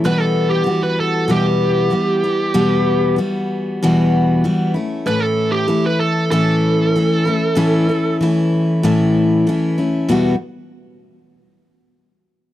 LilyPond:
<<
  \new Staff \with { instrumentName = "Lead electric guitar" } { \time 4/4 \key e \dorian \tempo 4 = 96 b'16 a'8 g'8 b'16 a'8 g'2~ | g'4 r2. | b'16 a'8 g'8 b'16 a'8 a'2~ | a'4 r2. |
r1 | }
  \new Staff \with { instrumentName = "Steel-string acoustic guitar" } { \time 4/4 \key e \dorian <e, b, e g b fis'>4 <e g b fis'>4 <e, b, e g b>4 <e g b>8 <e g b>8 | <e, b, e g b>4 <e g b fis'>4 <e, b, e g b fis'>4 <e g b fis'>8 <a cis' e'>8 | <a, e a cis' e'>4 <e a cis' e'>4 <a, e a cis' e'>4 <e a cis' e'>8 <a cis' e'>8 | <a, e a cis' e'>8 <a cis' e'>8 <e a cis' e'>4 <a, e a cis' e'>4 <e a cis' e'>8 <a cis' e'>8 |
<e, b, e g b fis'>8 r2. r8 | }
>>